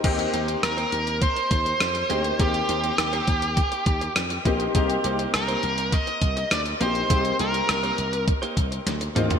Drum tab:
CC |x---------------|----------------|----------------|----------------|
HH |xxxxxxxxxxxxxxxx|xxxxxxxxxxxxxxxx|xxxxxxxxxxxxxxxx|xxxxxxxxxxxxxxxx|
SD |----r-------r---|----r-------r---|----r-------r---|----r-------o---|
T2 |----------------|----------------|----------------|--------------o-|
FT |----------------|----------------|----------------|---------------o|
BD |o-------o-o-----|o-----o-o-o---o-|o-------o-o-----|o-------o-o-----|